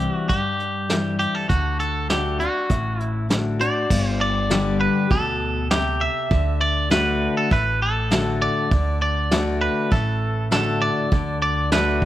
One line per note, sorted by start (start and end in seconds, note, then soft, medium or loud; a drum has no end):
0.00 0.24 C3 medium
0.00 0.26 E3 medium
0.00 0.27 G3 medium
0.00 0.27 C4 medium
0.00 0.27 E4 medium
0.00 0.14 G4 medium
0.00 closed hi-hat medium
0.14 0.28 F#4 medium
0.29 1.44 G2 medium
0.29 1.25 G2 medium
0.29 1.16 G4 medium
0.29 kick loud
0.29 closed hi-hat medium
0.60 closed hi-hat soft
0.89 1.46 E3 soft
0.89 1.47 G3 soft
0.89 1.47 C4 medium
0.89 1.47 E4 medium
0.89 snare loud
0.89 closed hi-hat medium
1.19 1.35 G4 medium
1.19 closed hi-hat medium
1.35 1.49 A4 medium
1.49 2.45 D2 medium
1.49 2.08 D3 medium
1.49 1.79 F#4 medium
1.49 kick loud
1.49 closed hi-hat medium
1.80 2.08 A4 medium
1.80 closed hi-hat medium
2.09 2.39 D3 medium
2.09 2.39 A3 medium
2.09 2.39 D4 medium
2.09 2.38 F#4 medium
2.09 2.38 G4 medium
2.09 snare loud
2.09 closed hi-hat medium
2.39 2.69 D4 soft
2.39 2.69 F#4 soft
2.39 3.02 F#4 medium
2.39 closed hi-hat medium
2.69 3.65 A1 medium
2.69 3.84 A2 medium
2.69 kick loud
2.69 closed hi-hat medium
3.00 3.26 E4 medium
3.00 closed hi-hat medium
3.29 3.58 D3 soft
3.29 3.59 A3 soft
3.29 3.59 D4 medium
3.29 3.58 F#4 medium
3.29 snare loud
3.29 closed hi-hat medium
3.60 3.90 D4 soft
3.60 3.89 F#4 medium
3.60 4.09 D5 medium
3.60 closed hi-hat medium
3.90 4.85 G1 loud
3.90 5.05 G2 loud
3.90 kick loud
3.90 crash loud
4.09 4.20 C5 medium
4.21 4.77 D5 medium
4.50 5.07 D3 medium
4.50 5.08 G3 medium
4.50 5.08 B3 medium
4.50 5.08 G4 loud
4.50 snare loud
4.81 5.12 B4 medium
5.11 6.06 D2 medium
5.11 5.68 B2 medium
5.11 5.67 A4 loud
5.11 kick loud
5.11 open hi-hat medium
5.71 6.28 C3 medium
5.71 6.02 G4 medium
5.71 snare loud
6.01 6.61 E5 loud
6.31 7.26 D2 medium
6.31 6.89 D3 medium
6.31 kick loud
6.31 open hi-hat soft
6.61 6.91 D5 loud
6.90 7.48 D3 medium
6.90 7.48 A3 medium
6.90 7.48 D4 loud
6.90 7.49 F#4 loud
6.90 7.37 B4 medium
6.90 snare loud
6.90 open hi-hat medium
7.37 7.52 A4 medium
7.51 8.46 A1 medium
7.51 8.65 A2 medium
7.51 7.80 B4 loud
7.51 kick loud
7.51 open hi-hat medium
7.82 8.38 A4 medium
8.11 8.68 D3 medium
8.11 8.68 A3 medium
8.11 8.69 D4 medium
8.11 8.69 F#4 medium
8.11 snare loud
8.11 open hi-hat medium
8.42 8.98 D5 loud
8.71 9.66 D2 loud
8.71 9.30 D3 medium
8.71 kick loud
8.71 open hi-hat soft
9.02 9.61 D5 loud
9.31 9.88 D3 medium
9.31 9.89 A3 loud
9.31 9.89 D4 medium
9.31 9.89 F#4 medium
9.31 snare loud
9.31 open hi-hat medium
9.61 9.92 B4 medium
9.91 10.87 A1 medium
9.91 11.06 A2 loud
9.91 10.48 A4 loud
9.91 kick loud
9.91 open hi-hat medium
10.51 11.08 D3 medium
10.51 11.09 A3 medium
10.51 11.09 D4 medium
10.51 11.09 F#4 medium
10.51 10.83 A4 medium
10.51 snare loud
10.51 open hi-hat medium
10.82 11.38 D5 loud
11.12 12.05 D2 medium
11.12 11.71 D3 medium
11.12 kick loud
11.12 open hi-hat medium
11.42 11.72 D5 loud
11.72 12.05 D3 medium
11.72 12.05 A3 medium
11.72 12.05 D4 loud
11.72 12.05 F#4 loud
11.72 12.05 B4 medium
11.72 snare loud
11.72 open hi-hat medium